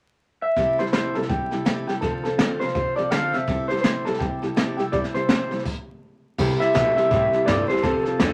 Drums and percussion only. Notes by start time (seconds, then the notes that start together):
0.56 kick, snare
0.79 snare
0.86 snare
0.93 snare, hi-hat pedal
1.15 snare
1.22 snare
1.29 kick, snare
1.52 snare
1.66 snare, hi-hat pedal
1.89 snare
2.02 kick, snare
2.25 snare
2.39 snare, hi-hat pedal
2.61 snare
2.68 snare
2.75 kick, snare
2.98 snare
3.12 snare, hi-hat pedal
3.33 snare
3.48 kick, snare
3.70 snare
3.77 snare
3.84 snare, hi-hat pedal
4.06 snare
4.14 snare
4.21 kick, snare
4.43 snare
4.57 snare, hi-hat pedal
4.79 snare
4.93 kick, snare
5.04 snare
5.15 snare
5.29 snare, hi-hat pedal
5.51 snare
5.59 snare
5.65 kick, crash
6.38 kick, snare, crash
6.61 snare
6.75 kick, snare, hi-hat pedal
6.97 snare
7.11 kick, snare
7.33 snare
7.47 kick, snare, hi-hat pedal
7.69 snare
7.77 snare
7.83 kick, snare
8.05 snare
8.20 kick, snare, hi-hat pedal